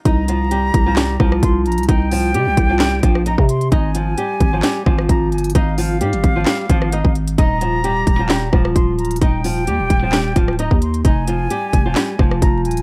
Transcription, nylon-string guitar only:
\new Staff \with { instrumentName = "Nylon-string guitar" } { \time 4/4 \key c \minor \tempo 4 = 131 <ees' ees''>8 <f f'>8 <g g'>8. <f f'>16 <g g'>8 <f f'>4. | <ees' ees''>8 <f f'>8 <g g'>8. <f f'>16 <g g'>8 <f f'>8 <ees' ees''>8 r8 | <ees' ees''>8 <f f'>8 <g g'>8. <f f'>16 <g g'>8 <f f'>4. | <ees' ees''>8 <f f'>8 <g g'>8. <f f'>16 <g g'>8 <f f'>8 <ees' ees''>8 r8 |
<ees' ees''>8 <f f'>8 <g g'>8. <f f'>16 <g g'>8 <f f'>4. | <ees' ees''>8 <f f'>8 <g g'>8. <f f'>16 <g g'>8 <f f'>8 <ees' ees''>8 r8 | <ees' ees''>8 <f f'>8 <g g'>8. <f f'>16 <g g'>8 <f f'>4. | }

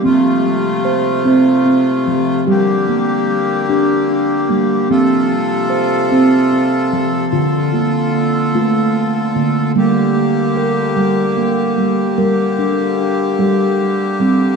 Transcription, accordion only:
<<
  \new Staff \with { instrumentName = "Accordion" } { \time 6/8 \key g \minor \tempo 4. = 49 <a f'>2. | <bes g'>2. | <f' a'>2.~ | <f' a'>2. |
<bes g'>2.~ | <bes g'>2. | }
  \new Staff \with { instrumentName = "Accordion" } { \clef bass \time 6/8 \key g \minor c2. | d2. | c2. | d2. |
d2.~ | d2. | }
>>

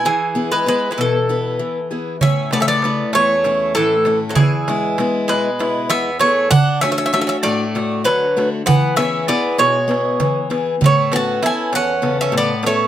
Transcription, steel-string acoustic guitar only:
\new Staff \with { instrumentName = "Steel-string acoustic guitar" } { \time 7/8 \key a \major \tempo 4 = 98 e8 <b e' gis'>8 <b e' b'>8 b,8 <b e' b'>8 e8 <b e' gis'>8 | a,8 <cis a e'>8 <a e'>8 e,8 <a cis' e'>8 a,8 <a cis' e'>8 | e,8 <gis b e'>8 <gis b e'>8 b,8 <gis b e'>8 e,8 <b e' gis'>8 | d8 <a d' fis'>8 <a d' fis'>8 a,8 <a d' fis'>8 d8 <a d' fis'>8 |
e8 <b e' gis'>8 <b e' gis'>8 b,8 <b e' gis'>8 e8 <b e' gis'>8 | a,8 <b cis' a'>8 <b cis' a'>8 e,8 <cis b a'>8 a,8 <b cis' a'>8 | }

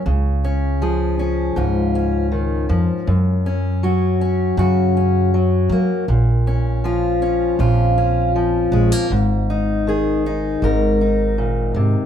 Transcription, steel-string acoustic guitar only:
\new Staff \with { instrumentName = "Steel-string acoustic guitar" } { \time 4/4 \key des \major \tempo 4 = 80 << { r8 des'8 aes'8 des'8 f'8 des'4. | r8 des'8 ges'8 des'8 ges'8 des'4 bes8 | r8 des'8 f'8 des'8 f'8 des'4 aes16 bes16 | r8 ees'8 aes'8 ees'8 bes'8 ees'4. | } \\ { des4 f4 aes,4 ees8 f8 | ges,4 ges4 des4 ges4 | bes,4 f4 f,4 f4 | aes,4 ees4 aes,4 bes,8 c8 | } >> }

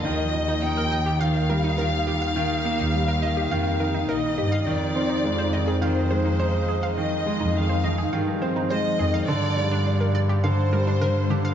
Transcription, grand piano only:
\new Staff \with { instrumentName = "Grand piano" } { \clef bass \time 4/4 \key f \dorian \tempo 4 = 104 ees8 ees8 ees'8 r8 ees8 g8 ees8 ees8 | ees8 bes8 g8 ees8 ees8 ees8 ees'8 r8 | ees8 c'8 aes8 ees8 ees8 aes8 ees'8 r8 | ees8 aes8 ees8 ees8 ees8 c'8 aes8 ees8 |
d8 g8 d'8 r8 d8 g8 d8 d8 | }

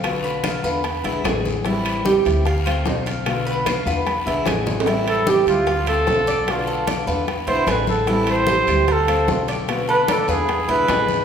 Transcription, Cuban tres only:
\new Staff \with { instrumentName = "Cuban tres" } { \time 4/4 \key e \phrygian \tempo 4 = 149 f''8 b'8 f''8 b'4 e'8 gis'4 | e'4 g'4 f''8 c''4 f''8~ | f''8 b'8 f''8 b'4 e'8 gis'4 | \key a \minor e'4 g'4 f''8 c''4 d''8~ |
d''8 a'8 d''8 b'4 e'8 gis'4 | e'4 g'4 f''8 c''4 d''8~ | d''8 a'8 d''8 b'4 e'8 gis'4 | }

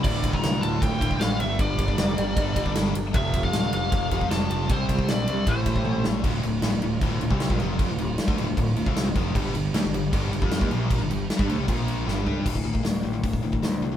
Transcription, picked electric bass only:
\new Staff \with { instrumentName = "Picked electric bass" } { \clef bass \time 4/4 \key d \minor \tempo 4 = 155 d,,8 d,,8 c,8 d,,8 d,,8 d,,8 a,,8 g,,8 | g,,8 g,,8 f,,8 g,,8 g,,8 g,,8 g,,8 g,,8 | f,,8 f,,8 d,,8 f,,8 f,,8 f,,8 f,,8 f,,8 | c,8 c,8 bes,,8 c,8 a,,8 a,,8 a,,8 a,,8 |
d,,8 d,,8 a,,16 d,,16 d,,8 d,,8 d,,16 c,8 bes,,16 f,,8~ | f,,16 d,,16 d,,8 r16 d,16 d,,16 d,,16 d,,8 d,,16 c,8 d,,16 f,,8 | g,,8 g,,8 d,16 g,,16 g,,8 g,,8 g,,16 f,8 ees,16 bes,,8~ | bes,,16 g,,16 g,,8 r16 g,16 d,16 c,16 bes,,4 g,,8 g,8 |
d,,8 d,,8 d,,8 a,,8 d,,8 d,,8 d,8 c,8 | }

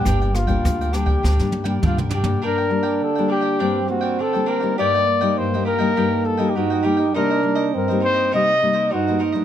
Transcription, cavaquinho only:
\new Staff \with { instrumentName = "Cavaquinho" } { \time 4/4 \key g \minor \tempo 4 = 102 <d' bes' d'' g''>16 <bes' d'' g''>16 r16 <bes' d'' g''>8 <bes' d'' g''>16 <d' bes' d'' g''>16 <bes' d'' g''>16 <d' bes' d'' g''>8 r16 <bes' d'' g''>16 <d' bes' d'' g''>16 <bes' d'' g''>16 <d' bes' d'' g''>16 <bes' d'' g''>16 | <d' bes' d'' g''>16 <bes' d'' g''>16 r16 <bes' d'' g''>8 <bes' d'' g''>16 <d' bes' d'' g''>16 <bes' d'' g''>16 <d' bes' d'' g''>8 r16 <bes' d'' g''>16 <d' bes' d'' g''>16 <bes' d'' g''>16 <d' bes' d'' g''>16 <bes' d'' g''>16 | <g' bes' ees'' g''>16 <bes' ees'' g''>16 r16 <bes' ees'' g''>8 <bes' ees'' g''>16 <g' bes' ees'' g''>16 <bes' ees'' g''>16 <g' bes' ees'' g''>8 r16 <bes' ees'' g''>16 <g' bes' ees'' g''>16 <bes' ees'' g''>16 <g' bes' ees'' g''>16 <bes' ees'' g''>16 | <ees' bes' c'' ees''>16 <bes' c'' ees''>16 r16 <bes' c'' ees''>8 <bes' c'' ees''>16 <ees' bes' c'' ees''>16 <bes' c'' ees''>16 <ees' bes' c'' ees''>8 r16 <bes' c'' ees''>16 <ees' bes' c'' ees''>16 <bes' c'' ees''>16 <ees' bes' c'' ees''>16 <bes' c'' ees''>16 | }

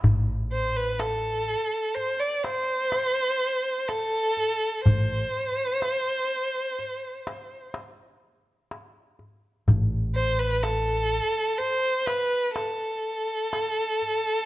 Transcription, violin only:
\new Staff \with { instrumentName = "Violin" } { \time 10/8 \tempo 4 = 62 r8 c''16 b'16 a'4 c''16 d''16 c''4. a'4 | c''2. r2 | r8 c''16 b'16 a'4 c''8 b'8 a'2 | }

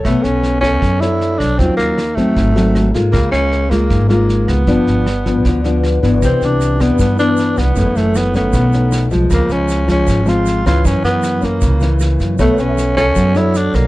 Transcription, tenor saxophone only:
\new Staff \with { instrumentName = "Tenor saxophone" } { \time 4/4 \key b \dorian \tempo 4 = 156 a8 cis'4 cis'4 e'4 d'8 | c'8 ais4 a2 r8 | ais8 cis'4 ais4 ais4 b8~ | b2. r4 |
c'8 d'4 b8 b8 d'4 b8~ | b8 a8 b8 b2 r8 | bes8 cis'4 cis'4 eis'4 eis'8 | cis'8 b4 ais4. r4 |
a8 cis'4 cis'4 e'8 d'8 bes8 | }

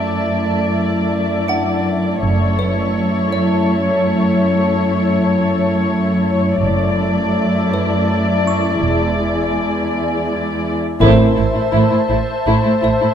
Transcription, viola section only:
\new Staff \with { instrumentName = "Viola section" } { \time 3/4 \key fis \minor \tempo 4 = 82 << { e'2. | e'2.~ | e'2. | e'2.~ |
e'2~ e'8 r8 | \key a \phrygian r2. | } \\ { a2. | a2.~ | a2. | a2. |
gis2~ gis8. r16 | a16 a16 a16 a16 a16 a16 a16 r16 a16 a16 a16 a16 | } >> }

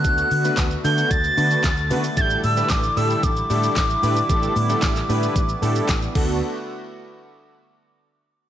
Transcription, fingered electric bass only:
\new Staff \with { instrumentName = "Fingered electric bass" } { \clef bass \time 4/4 \key d \major \tempo 4 = 113 d,8 d8 d,8 d8 d,8 d8 d,8 d8 | a,,8 a,8 a,,8 a,8 a,,8 a,8 a,,8 a,8 | a,,8 a,8 a,,8 a,8 a,,8 a,8 a,,8 d,8 | r1 | }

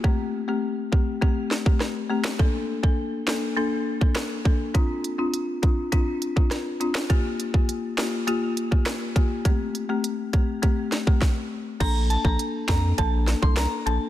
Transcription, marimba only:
\new Staff \with { instrumentName = "Marimba" } { \time 4/4 \key bes \lydian \tempo 4 = 102 <a c' g'>16 r8 <a c' g'>16 r8 <a c' g'>16 r16 <a c' g'>16 r8 <a c' g'>8. <a c' g'>8 | <bes d' a'>16 r8 <bes d' a'>16 r8 <bes d' a'>16 r16 <bes d' a'>16 r8 <bes d' a'>8. <bes d' a'>8 | <c' d' f'>16 r8 <c' d' f'>16 r8 <c' d' f'>16 r16 <c' d' f'>16 r8 <c' d' f'>8. <c' d' f'>8 | <bes f' g'>16 r8 <bes f' g'>16 r8 <bes f' g'>16 r16 <bes f' g'>16 r8 <bes f' g'>8. <bes f' g'>8 |
<a c' g'>16 r8 <a c' g'>16 r8 <a c' g'>16 r16 <a c' g'>16 r8 <a c' g'>16 r4 | <bes d' a'>16 r8 <bes d' a'>16 r8 <bes d' a'>16 r16 <bes d' a'>16 r8 <bes d' a'>8. <bes d' a'>8 | }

